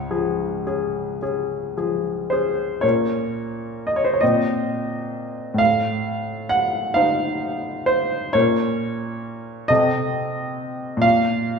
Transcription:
Already playing: C#2 C#5
0.11 F3 G#4
0.67 C#4 G#4
1.22 C#4 G#4
1.77 F3 G#4
2.30 C#4 G#4 C5
2.81 A#2 C#4 A#4 C#5
3.87 D#5
3.96 C#5
4.05 C5
4.14 C#5
4.21 A#2 C4 C5 D#5
5.54 A2
5.58 F5
6.49 F#5
6.94 D#4 C5 F5
7.86 C5
8.33 A#2 C#4 A#4 C#5
9.68 C3 C4 A4 D#5
10.97 A#2
11.02 F5

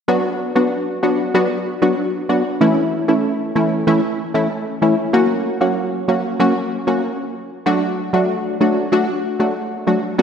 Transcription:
0.08 F#3 B3 D4 F#4
0.55 F#3 B3 D4 F#4
1.03 F#3 B3 D4 F#4
1.34 F#3 B3 D4 F#4
1.82 F#3 B3 D4 F#4
2.29 F#3 B3 D4 F#4
2.61 E3 A3 C#4 E4
3.08 E3 A3 C#4 E4
3.55 E3 A3 C#4 E4
3.87 E3 A3 C#4 E4
4.34 E3 A3 C#4 E4
4.82 E3 A3 C#4 E4
5.13 F#3 A#3 C#4 F#4
5.61 F#3 A#3 C#4 F#4
6.08 F#3 A#3 C#4 F#4
6.40 F#3 A#3 C#4 F#4
6.87 F#3 A#3 C#4 F#4
7.66 F#3 A3 D4 F#4
8.13 F#3 A3 D4 F#4
8.61 F#3 A3 D4 F#4
8.92 F#3 A3 D4 F#4
9.40 F#3 A3 D4 F#4
9.87 F#3 A3 D4 F#4
10.18 F#3 B3 D4 F#4

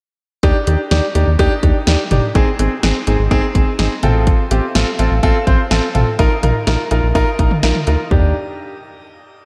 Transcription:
0.43 D#2 D4 D#4 G4, kick, closed hi-hat
0.67 D#2 D4 D#4 G4, closed hi-hat
0.91 D#2 D4 D#4 G4, snare, closed hi-hat
1.15 D#2 D4 D#4 G4, closed hi-hat
1.27 D#2
1.39 D#2 D4 D#4 G4, kick, closed hi-hat
1.63 D#2 D4 D#4 G4, kick, closed hi-hat
1.87 D#2 D4 D#4 G4, snare, closed hi-hat
2.11 G1 D4 D#4 G4, closed hi-hat, mid tom
2.35 G#1 C4 D#4 G#4, kick, closed hi-hat
2.59 G#1 C4 D#4 G#4, closed hi-hat
2.83 G#1 C4 D#4 G#4, snare, closed hi-hat
3.07 G#1 C4 D#4 G#4, closed hi-hat
3.19 G#1
3.31 G#1 C4 D#4 G#4, kick, closed hi-hat
3.55 G#1 C4 D#4 G#4, kick, closed hi-hat
3.79 G#1 C4 D#4 G#4 D#5, snare, closed hi-hat
4.03 A1 C4 F4 A4 G5, closed hi-hat, mid tom
4.27 kick, closed hi-hat
4.51 A1 C4 F4 G4, closed hi-hat
4.75 A1 C4 F4 A4, snare, closed hi-hat
4.99 A1 C4 F4 A4, closed hi-hat
5.11 A1
5.23 A1 C4 F4 A4, kick, closed hi-hat
5.47 A1 C4 F4 C5, kick, closed hi-hat
5.71 A1 C4 F4 A4, snare, closed hi-hat
5.95 A1 C4 F4 A4, closed hi-hat, mid tom
6.19 A#1 D#4 F4 A#4, kick, closed hi-hat
6.43 A#1 D#4 F4 A#4, closed hi-hat, mid tom
6.67 A#1 D#4 F4 A#4, snare, closed hi-hat
6.91 A#1 D#4 F4 A#4, closed hi-hat
7.03 A#1
7.15 A#1 D#4 F4 A#4, kick, closed hi-hat
7.39 A#1 D#4 F4 A#4, kick, closed hi-hat
7.51 mid tom
7.63 A#1 D#4 F4 A#4, snare, closed hi-hat
7.75 mid tom
7.87 D2 D#4 F4 A#4, closed hi-hat
8.11 D#2 D4 D#4 G4, kick, floor tom

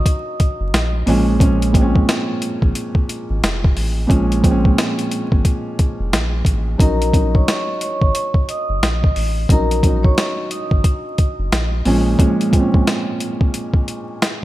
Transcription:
Already playing: F#3 C#4 D#4 D#5 D#6
0.06 kick, closed hi-hat
0.40 kick, closed hi-hat
0.60 F#1
0.73 A#1, snare, closed hi-hat
1.06 A#1 A#2 F3 G#3 C#4, open hi-hat
1.39 A#2 F3 G#3 C#4, kick, closed hi-hat
1.62 closed hi-hat
1.72 A#2 F3 G#3 C4, kick, closed hi-hat
1.81 C#4
1.96 kick
2.09 snare, closed hi-hat
2.42 closed hi-hat
2.62 A#1, kick
2.75 closed hi-hat
2.95 kick
3.09 closed hi-hat
3.30 G#1
3.42 F1, snare, closed hi-hat
3.64 kick
3.76 A1, open hi-hat
4.07 A#1 A#2 F3 G#3 C#4, kick, closed hi-hat
4.32 closed hi-hat
4.42 A#2 F3 G#3 C4, kick, closed hi-hat
4.51 C#4
4.65 kick
4.78 snare, closed hi-hat
4.99 closed hi-hat
5.11 closed hi-hat
5.32 G#1, kick
5.45 kick, closed hi-hat
5.79 kick, closed hi-hat
5.99 F1
6.12 A#1, snare, closed hi-hat
6.45 A1, kick, closed hi-hat
6.78 A#1 F#3 C#4 D#4 A#4 A#5, kick, closed hi-hat
7.02 closed hi-hat
7.12 F#3 C#4 D#4, kick, closed hi-hat
7.35 C#5 C#6, kick
7.48 snare, closed hi-hat
7.81 C#5 C#6, closed hi-hat
8.02 G#1, kick
8.15 closed hi-hat
8.34 kick
8.49 D#5 D#6, closed hi-hat
8.69 F#1
8.82 A#1, snare, closed hi-hat
9.04 kick
9.16 A1, open hi-hat
9.49 A#1 F#3 C#4 D#4 A#4 A#5, kick, closed hi-hat
9.71 closed hi-hat
9.83 F#3 C#4 D#4, kick, closed hi-hat
10.03 C#5 C#6, kick
10.18 snare, closed hi-hat
10.50 D#5 D#6, closed hi-hat
10.71 G#1, kick
10.84 kick, closed hi-hat
11.18 kick, closed hi-hat
11.39 F#1
11.52 A#1, snare, closed hi-hat
11.85 A#1 A#2 F3 G#3 C#4, open hi-hat
12.18 A#2 F3 G#3 C#4, kick, closed hi-hat
12.41 closed hi-hat
12.51 A#2 F3 G#3 C4, kick, closed hi-hat
12.60 C#4
12.74 kick
12.87 snare, closed hi-hat
13.20 closed hi-hat
13.41 kick
13.54 closed hi-hat
13.74 kick
13.88 closed hi-hat
14.22 snare, closed hi-hat

